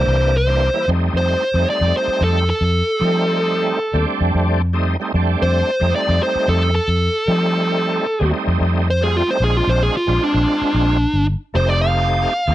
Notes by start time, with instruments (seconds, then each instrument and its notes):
Already playing: tonewheel organ E3 G3 A#3 D4, lead electric guitar C5
0.07 fingered electric bass C2
0.37 lead electric guitar C5
0.47 tonewheel organ E3 G3 A#3 D4
0.74 tonewheel organ E3 G3 A#3 E4
0.87 fingered electric bass F2, tonewheel organ G3 A3 C4 D#4
1.14 fingered electric bass F2, lead electric guitar C5
1.53 fingered electric bass F2, tonewheel organ G3 A3 C4 D#4
1.70 lead electric guitar D5
1.81 fingered electric bass F2
1.97 lead electric guitar C5
2.08 muted fingered electric bass stroke
2.21 fingered electric bass F2, lead electric guitar A4
2.50 lead electric guitar A4
2.61 fingered electric bass F2
2.99 fingered electric bass F3, tonewheel organ G3 A3 C4 D#4
3.93 fingered electric bass D#2, tonewheel organ G3 A3 C4 D4
4.21 fingered electric bass F2
4.35 fingered electric bass F2
4.73 tonewheel organ G3 A3 C4 D#4
5.00 tonewheel organ G3 A3 C4 D#4
5.14 fingered electric bass F2, tonewheel organ G3 A3 C4 D4
5.42 fingered electric bass F2, lead electric guitar C5
5.80 fingered electric bass F2, tonewheel organ G3 A3 C4 D#4
5.96 lead electric guitar D5
6.09 fingered electric bass F2
6.23 lead electric guitar C5
6.35 muted fingered electric bass stroke
6.48 fingered electric bass F2, lead electric guitar A4
6.75 lead electric guitar A4
6.88 fingered electric bass F2
7.27 fingered electric bass F3, tonewheel organ G3 A3 C4 D#4
8.20 fingered electric bass D#2, tonewheel organ G3 A3 C4 D#4
8.47 fingered electric bass F2
8.60 fingered electric bass F2
8.90 lead electric guitar C5
9.01 tonewheel organ G3 A3 C4 F4, lead electric guitar G#4
9.17 lead electric guitar F4
9.27 tonewheel organ G3 A3 C4 D#4, lead electric guitar C5
9.40 fingered electric bass A#1, tonewheel organ G#3 C4 D4 F4
9.44 lead electric guitar G#4
9.57 lead electric guitar F4
9.67 fingered electric bass A#1, lead electric guitar C5
9.83 lead electric guitar G#4
9.97 lead electric guitar F4
10.07 fingered electric bass A#1, tonewheel organ G#3 C4 D4 F4
10.24 lead electric guitar D4
10.34 fingered electric bass A#1
10.62 muted fingered electric bass stroke
10.74 fingered electric bass A#1
11.14 fingered electric bass G1
11.54 fingered electric bass F1, tonewheel organ A3 C4 D#4 G4, lead electric guitar C5
11.69 lead electric guitar D5
11.82 lead electric guitar F5
12.47 fingered electric bass D#2, tonewheel organ A3 C4 D#4 G4